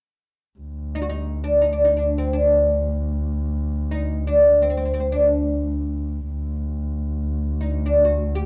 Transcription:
0.59 double bass D2
0.95 oud D#4
1.02 oud F#4
1.09 oud D#4
1.44 oud D4
1.61 oud D#4
1.73 oud D4
1.85 oud D#4
1.97 oud D4
2.18 oud C4
2.33 oud D4
3.91 oud D#4
4.27 oud D4
4.62 oud C4
4.70 oud C4
4.77 oud C4
4.85 oud C4
4.94 oud C4
5.00 oud C4
5.12 oud D4
6.30 double bass D2
7.61 oud D#4
7.86 oud D4
8.05 oud F#4
8.35 oud G4

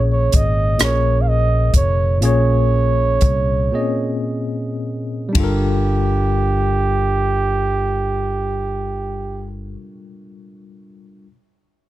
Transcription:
Already playing: fingered electric bass A#1, tine electric piano A#2 A#3 C#4 G#4 C#5
0.12 flugelhorn C#5
0.32 fingered electric bass G#1, flugelhorn D#5, kick, closed hi-hat
0.78 fingered electric bass A#1, tine electric piano A#2 A#3 C#4 G#4 A#4, cross-stick, closed hi-hat
0.83 flugelhorn C#5
1.21 flugelhorn F5
1.28 flugelhorn D#5
1.74 fingered electric bass F1, flugelhorn C#5, kick, closed hi-hat
2.21 fingered electric bass A#1, tine electric piano A#2 A#3 C#4 G#4, closed hi-hat
2.25 tine electric piano C#5, flugelhorn C#5
3.21 fingered electric bass C2, kick, closed hi-hat
3.72 tine electric piano A#2 A#3 C4 G#4 D#5
3.80 tine electric piano C#4
5.29 tine electric piano G3 D4
5.35 fingered electric bass G1, tine electric piano F4, flugelhorn G4, kick, ride
5.40 tine electric piano A4 A#4

